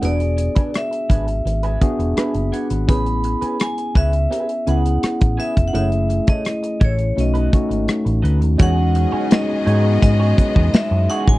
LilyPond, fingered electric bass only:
\new Staff \with { instrumentName = "Fingered electric bass" } { \clef bass \time 4/4 \key e \major \tempo 4 = 84 e,,8. r8. gis,,8 gis,,8 r16 e,,16 r16 fis,,16 r16 gis,,16 | a,,8. r8. cis,8 r8 cis,8 r16 a,,16 r16 f,,16 | fis,,8. r8. a,,8 b,,8 r16 gis,,16 r16 a,,16 d,16 dis,16 | e,8. r8. gis,8 gis,8 r16 e,16 r16 fis,16 r16 a,,16 | }